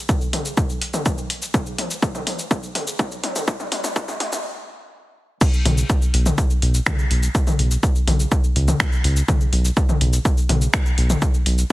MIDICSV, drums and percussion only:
0, 0, Header, 1, 2, 480
1, 0, Start_track
1, 0, Tempo, 483871
1, 1530, Time_signature, 4, 2, 24, 8
1, 11626, End_track
2, 0, Start_track
2, 0, Title_t, "Drums"
2, 89, Note_on_c, 9, 36, 118
2, 89, Note_on_c, 9, 47, 62
2, 89, Note_on_c, 9, 82, 57
2, 188, Note_off_c, 9, 36, 0
2, 188, Note_off_c, 9, 47, 0
2, 188, Note_off_c, 9, 82, 0
2, 210, Note_on_c, 9, 82, 33
2, 309, Note_off_c, 9, 82, 0
2, 329, Note_on_c, 9, 46, 107
2, 329, Note_on_c, 9, 47, 86
2, 428, Note_off_c, 9, 46, 0
2, 428, Note_off_c, 9, 47, 0
2, 450, Note_on_c, 9, 82, 64
2, 549, Note_off_c, 9, 82, 0
2, 569, Note_on_c, 9, 36, 127
2, 569, Note_on_c, 9, 47, 62
2, 569, Note_on_c, 9, 82, 54
2, 668, Note_off_c, 9, 36, 0
2, 668, Note_off_c, 9, 47, 0
2, 668, Note_off_c, 9, 82, 0
2, 689, Note_on_c, 9, 82, 32
2, 789, Note_off_c, 9, 82, 0
2, 808, Note_on_c, 9, 46, 109
2, 908, Note_off_c, 9, 46, 0
2, 929, Note_on_c, 9, 47, 89
2, 929, Note_on_c, 9, 82, 68
2, 1029, Note_off_c, 9, 47, 0
2, 1029, Note_off_c, 9, 82, 0
2, 1048, Note_on_c, 9, 47, 69
2, 1048, Note_on_c, 9, 82, 57
2, 1049, Note_on_c, 9, 36, 116
2, 1148, Note_off_c, 9, 36, 0
2, 1148, Note_off_c, 9, 47, 0
2, 1148, Note_off_c, 9, 82, 0
2, 1170, Note_on_c, 9, 82, 35
2, 1269, Note_off_c, 9, 82, 0
2, 1289, Note_on_c, 9, 46, 109
2, 1389, Note_off_c, 9, 46, 0
2, 1410, Note_on_c, 9, 82, 64
2, 1509, Note_off_c, 9, 82, 0
2, 1529, Note_on_c, 9, 36, 124
2, 1530, Note_on_c, 9, 47, 91
2, 1530, Note_on_c, 9, 82, 55
2, 1628, Note_off_c, 9, 36, 0
2, 1629, Note_off_c, 9, 47, 0
2, 1629, Note_off_c, 9, 82, 0
2, 1650, Note_on_c, 9, 82, 32
2, 1749, Note_off_c, 9, 82, 0
2, 1770, Note_on_c, 9, 46, 110
2, 1770, Note_on_c, 9, 47, 77
2, 1869, Note_off_c, 9, 46, 0
2, 1869, Note_off_c, 9, 47, 0
2, 1890, Note_on_c, 9, 82, 66
2, 1990, Note_off_c, 9, 82, 0
2, 2009, Note_on_c, 9, 36, 123
2, 2010, Note_on_c, 9, 47, 81
2, 2010, Note_on_c, 9, 82, 55
2, 2108, Note_off_c, 9, 36, 0
2, 2109, Note_off_c, 9, 47, 0
2, 2109, Note_off_c, 9, 82, 0
2, 2131, Note_on_c, 9, 47, 89
2, 2131, Note_on_c, 9, 82, 33
2, 2230, Note_off_c, 9, 47, 0
2, 2230, Note_off_c, 9, 82, 0
2, 2250, Note_on_c, 9, 46, 109
2, 2250, Note_on_c, 9, 47, 81
2, 2349, Note_off_c, 9, 46, 0
2, 2349, Note_off_c, 9, 47, 0
2, 2371, Note_on_c, 9, 82, 64
2, 2470, Note_off_c, 9, 82, 0
2, 2488, Note_on_c, 9, 36, 127
2, 2490, Note_on_c, 9, 47, 78
2, 2490, Note_on_c, 9, 82, 53
2, 2588, Note_off_c, 9, 36, 0
2, 2589, Note_off_c, 9, 47, 0
2, 2589, Note_off_c, 9, 82, 0
2, 2610, Note_on_c, 9, 82, 31
2, 2709, Note_off_c, 9, 82, 0
2, 2730, Note_on_c, 9, 46, 109
2, 2730, Note_on_c, 9, 47, 86
2, 2829, Note_off_c, 9, 46, 0
2, 2829, Note_off_c, 9, 47, 0
2, 2850, Note_on_c, 9, 82, 64
2, 2949, Note_off_c, 9, 82, 0
2, 2969, Note_on_c, 9, 36, 127
2, 2969, Note_on_c, 9, 47, 88
2, 2969, Note_on_c, 9, 82, 55
2, 3068, Note_off_c, 9, 36, 0
2, 3068, Note_off_c, 9, 47, 0
2, 3068, Note_off_c, 9, 82, 0
2, 3090, Note_on_c, 9, 82, 33
2, 3190, Note_off_c, 9, 82, 0
2, 3209, Note_on_c, 9, 46, 111
2, 3209, Note_on_c, 9, 47, 88
2, 3309, Note_off_c, 9, 46, 0
2, 3309, Note_off_c, 9, 47, 0
2, 3331, Note_on_c, 9, 47, 89
2, 3331, Note_on_c, 9, 82, 65
2, 3430, Note_off_c, 9, 47, 0
2, 3430, Note_off_c, 9, 82, 0
2, 3449, Note_on_c, 9, 36, 127
2, 3450, Note_on_c, 9, 47, 95
2, 3450, Note_on_c, 9, 82, 52
2, 3548, Note_off_c, 9, 36, 0
2, 3549, Note_off_c, 9, 47, 0
2, 3549, Note_off_c, 9, 82, 0
2, 3570, Note_on_c, 9, 47, 82
2, 3570, Note_on_c, 9, 82, 32
2, 3669, Note_off_c, 9, 47, 0
2, 3669, Note_off_c, 9, 82, 0
2, 3688, Note_on_c, 9, 46, 108
2, 3688, Note_on_c, 9, 47, 92
2, 3788, Note_off_c, 9, 46, 0
2, 3788, Note_off_c, 9, 47, 0
2, 3810, Note_on_c, 9, 47, 87
2, 3810, Note_on_c, 9, 82, 65
2, 3909, Note_off_c, 9, 47, 0
2, 3909, Note_off_c, 9, 82, 0
2, 3929, Note_on_c, 9, 36, 121
2, 3929, Note_on_c, 9, 47, 101
2, 3929, Note_on_c, 9, 82, 53
2, 4028, Note_off_c, 9, 36, 0
2, 4028, Note_off_c, 9, 47, 0
2, 4028, Note_off_c, 9, 82, 0
2, 4050, Note_on_c, 9, 47, 88
2, 4050, Note_on_c, 9, 82, 32
2, 4149, Note_off_c, 9, 47, 0
2, 4149, Note_off_c, 9, 82, 0
2, 4169, Note_on_c, 9, 46, 112
2, 4169, Note_on_c, 9, 47, 97
2, 4268, Note_off_c, 9, 46, 0
2, 4268, Note_off_c, 9, 47, 0
2, 4290, Note_on_c, 9, 47, 84
2, 4290, Note_on_c, 9, 82, 66
2, 4390, Note_off_c, 9, 47, 0
2, 4390, Note_off_c, 9, 82, 0
2, 5369, Note_on_c, 9, 36, 122
2, 5370, Note_on_c, 9, 49, 104
2, 5370, Note_on_c, 9, 82, 60
2, 5468, Note_off_c, 9, 36, 0
2, 5469, Note_off_c, 9, 49, 0
2, 5469, Note_off_c, 9, 82, 0
2, 5491, Note_on_c, 9, 82, 36
2, 5590, Note_off_c, 9, 82, 0
2, 5610, Note_on_c, 9, 46, 105
2, 5610, Note_on_c, 9, 47, 87
2, 5709, Note_off_c, 9, 46, 0
2, 5709, Note_off_c, 9, 47, 0
2, 5730, Note_on_c, 9, 82, 69
2, 5829, Note_off_c, 9, 82, 0
2, 5849, Note_on_c, 9, 36, 120
2, 5850, Note_on_c, 9, 82, 61
2, 5948, Note_off_c, 9, 36, 0
2, 5949, Note_off_c, 9, 82, 0
2, 5970, Note_on_c, 9, 82, 35
2, 6070, Note_off_c, 9, 82, 0
2, 6089, Note_on_c, 9, 46, 103
2, 6188, Note_off_c, 9, 46, 0
2, 6210, Note_on_c, 9, 47, 87
2, 6210, Note_on_c, 9, 82, 66
2, 6309, Note_off_c, 9, 47, 0
2, 6309, Note_off_c, 9, 82, 0
2, 6329, Note_on_c, 9, 36, 123
2, 6330, Note_on_c, 9, 82, 58
2, 6428, Note_off_c, 9, 36, 0
2, 6429, Note_off_c, 9, 82, 0
2, 6450, Note_on_c, 9, 82, 35
2, 6550, Note_off_c, 9, 82, 0
2, 6570, Note_on_c, 9, 46, 102
2, 6669, Note_off_c, 9, 46, 0
2, 6691, Note_on_c, 9, 82, 75
2, 6790, Note_off_c, 9, 82, 0
2, 6809, Note_on_c, 9, 36, 122
2, 6810, Note_on_c, 9, 26, 122
2, 6810, Note_on_c, 9, 47, 88
2, 6810, Note_on_c, 9, 82, 58
2, 6908, Note_off_c, 9, 36, 0
2, 6909, Note_off_c, 9, 26, 0
2, 6909, Note_off_c, 9, 47, 0
2, 6909, Note_off_c, 9, 82, 0
2, 6932, Note_on_c, 9, 82, 35
2, 7031, Note_off_c, 9, 82, 0
2, 7050, Note_on_c, 9, 46, 107
2, 7149, Note_off_c, 9, 46, 0
2, 7171, Note_on_c, 9, 82, 67
2, 7270, Note_off_c, 9, 82, 0
2, 7289, Note_on_c, 9, 36, 121
2, 7290, Note_on_c, 9, 82, 57
2, 7388, Note_off_c, 9, 36, 0
2, 7390, Note_off_c, 9, 82, 0
2, 7411, Note_on_c, 9, 47, 87
2, 7411, Note_on_c, 9, 82, 36
2, 7510, Note_off_c, 9, 47, 0
2, 7510, Note_off_c, 9, 82, 0
2, 7530, Note_on_c, 9, 46, 112
2, 7629, Note_off_c, 9, 46, 0
2, 7651, Note_on_c, 9, 82, 68
2, 7750, Note_off_c, 9, 82, 0
2, 7769, Note_on_c, 9, 36, 124
2, 7770, Note_on_c, 9, 82, 59
2, 7868, Note_off_c, 9, 36, 0
2, 7869, Note_off_c, 9, 82, 0
2, 7891, Note_on_c, 9, 82, 35
2, 7990, Note_off_c, 9, 82, 0
2, 8010, Note_on_c, 9, 46, 107
2, 8010, Note_on_c, 9, 47, 87
2, 8110, Note_off_c, 9, 46, 0
2, 8110, Note_off_c, 9, 47, 0
2, 8131, Note_on_c, 9, 82, 67
2, 8230, Note_off_c, 9, 82, 0
2, 8249, Note_on_c, 9, 36, 127
2, 8250, Note_on_c, 9, 82, 59
2, 8348, Note_off_c, 9, 36, 0
2, 8350, Note_off_c, 9, 82, 0
2, 8371, Note_on_c, 9, 82, 34
2, 8470, Note_off_c, 9, 82, 0
2, 8491, Note_on_c, 9, 46, 109
2, 8590, Note_off_c, 9, 46, 0
2, 8612, Note_on_c, 9, 47, 91
2, 8612, Note_on_c, 9, 82, 71
2, 8711, Note_off_c, 9, 47, 0
2, 8711, Note_off_c, 9, 82, 0
2, 8729, Note_on_c, 9, 36, 120
2, 8730, Note_on_c, 9, 26, 127
2, 8730, Note_on_c, 9, 82, 56
2, 8829, Note_off_c, 9, 36, 0
2, 8830, Note_off_c, 9, 26, 0
2, 8830, Note_off_c, 9, 82, 0
2, 8852, Note_on_c, 9, 82, 35
2, 8951, Note_off_c, 9, 82, 0
2, 8971, Note_on_c, 9, 46, 106
2, 9070, Note_off_c, 9, 46, 0
2, 9092, Note_on_c, 9, 82, 67
2, 9191, Note_off_c, 9, 82, 0
2, 9210, Note_on_c, 9, 36, 127
2, 9211, Note_on_c, 9, 47, 93
2, 9211, Note_on_c, 9, 82, 55
2, 9309, Note_off_c, 9, 36, 0
2, 9310, Note_off_c, 9, 47, 0
2, 9310, Note_off_c, 9, 82, 0
2, 9331, Note_on_c, 9, 82, 33
2, 9430, Note_off_c, 9, 82, 0
2, 9450, Note_on_c, 9, 46, 111
2, 9549, Note_off_c, 9, 46, 0
2, 9571, Note_on_c, 9, 82, 66
2, 9671, Note_off_c, 9, 82, 0
2, 9690, Note_on_c, 9, 36, 127
2, 9690, Note_on_c, 9, 82, 59
2, 9789, Note_off_c, 9, 36, 0
2, 9790, Note_off_c, 9, 82, 0
2, 9811, Note_on_c, 9, 47, 94
2, 9811, Note_on_c, 9, 82, 34
2, 9911, Note_off_c, 9, 47, 0
2, 9911, Note_off_c, 9, 82, 0
2, 9931, Note_on_c, 9, 46, 111
2, 10030, Note_off_c, 9, 46, 0
2, 10051, Note_on_c, 9, 82, 68
2, 10150, Note_off_c, 9, 82, 0
2, 10170, Note_on_c, 9, 36, 127
2, 10170, Note_on_c, 9, 82, 55
2, 10269, Note_off_c, 9, 36, 0
2, 10270, Note_off_c, 9, 82, 0
2, 10292, Note_on_c, 9, 82, 33
2, 10391, Note_off_c, 9, 82, 0
2, 10410, Note_on_c, 9, 46, 114
2, 10410, Note_on_c, 9, 47, 90
2, 10509, Note_off_c, 9, 46, 0
2, 10509, Note_off_c, 9, 47, 0
2, 10530, Note_on_c, 9, 82, 69
2, 10629, Note_off_c, 9, 82, 0
2, 10650, Note_on_c, 9, 26, 120
2, 10650, Note_on_c, 9, 36, 126
2, 10650, Note_on_c, 9, 82, 55
2, 10749, Note_off_c, 9, 26, 0
2, 10749, Note_off_c, 9, 36, 0
2, 10749, Note_off_c, 9, 82, 0
2, 10771, Note_on_c, 9, 82, 35
2, 10870, Note_off_c, 9, 82, 0
2, 10890, Note_on_c, 9, 46, 110
2, 10989, Note_off_c, 9, 46, 0
2, 11010, Note_on_c, 9, 47, 93
2, 11010, Note_on_c, 9, 82, 64
2, 11110, Note_off_c, 9, 47, 0
2, 11110, Note_off_c, 9, 82, 0
2, 11129, Note_on_c, 9, 36, 127
2, 11130, Note_on_c, 9, 82, 54
2, 11229, Note_off_c, 9, 36, 0
2, 11229, Note_off_c, 9, 82, 0
2, 11251, Note_on_c, 9, 82, 32
2, 11350, Note_off_c, 9, 82, 0
2, 11369, Note_on_c, 9, 46, 114
2, 11468, Note_off_c, 9, 46, 0
2, 11490, Note_on_c, 9, 82, 65
2, 11589, Note_off_c, 9, 82, 0
2, 11626, End_track
0, 0, End_of_file